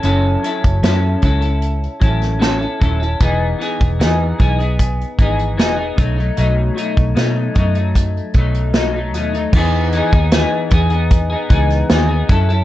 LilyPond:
<<
  \new Staff \with { instrumentName = "Clean electric guitar" } { \time 4/4 \key e \major \tempo 4 = 76 <fis cis' e' a'>8 <fis cis' e' a'>8 <fis cis' e' a'>8 <fis cis' e' a'>16 <cis' e' a'>8. <fis cis' e' a'>8 <fis cis' e' a'>16 <cis' e' a'>16 <fis cis' e' a'>16 <cis' e' a'>16 | <e b dis' gis'>8 <e b dis' gis'>8 <e b dis' gis'>8 <e b dis' gis'>16 <b dis' gis'>8. <e b dis' gis'>8 <e b dis' gis'>16 <b dis' gis'>16 <b, fis a dis'>16 <fis a dis'>16 | <b, fis a dis'>8 <b, fis a dis'>8 <b, fis a dis'>8 <b, fis a dis'>16 <fis a dis'>8. <b, fis a dis'>8 <b, fis a dis'>16 <fis a dis'>16 <b, fis a dis'>16 <fis a dis'>16 | <e b dis' gis'>8 <e b dis' gis'>16 <b dis' gis'>16 <e b dis' gis'>8 <e b dis' gis'>16 <b dis' gis'>8 <b dis' gis'>16 <e b dis' gis'>8 <e b dis' gis'>16 <b dis' gis'>16 <fis cis' e' a'>16 <cis' e' a'>16 | }
  \new Staff \with { instrumentName = "Fingered electric bass" } { \clef bass \time 4/4 \key e \major fis,,8 r16 fis,,16 fis,8 cis,4 a,,4 dis,,8 | e,,8 r16 e,,16 e,8 b,,4 gis,,8 e,,8 b,,8 | b,,8 r16 b,,16 b,8 fis,4 b,,4 dis,8 | e,8. dis,8 r16 e,4 cis,8 dis,8 fis,8 | }
  \new DrumStaff \with { instrumentName = "Drums" } \drummode { \time 4/4 hh8 hh16 <hh bd>16 <hh sn>8 <hh bd>16 hh16 hh16 hh16 <hh bd>16 <hh sn>16 <hh sn>16 hh16 <hh bd>16 hh16 | <hh bd>8 hh16 <hh bd>16 <hh sn>8 <hh bd>16 hh16 <hh bd>16 hh16 <hh bd>16 hh16 <hh sn>8 <hh bd>16 hh16 | hh8 hh16 <hh bd>16 <hh sn>8 <hh bd>16 hh16 <hh bd>16 hh16 <hh bd>16 hh16 <hh sn>8 hh16 hh16 | <cymc bd>8 hh16 <hh bd>16 <hh sn>8 <hh bd>16 hh16 <hh bd>8 <hh bd>16 <hh sn>16 <hh sn>8 <hh bd>16 hh16 | }
>>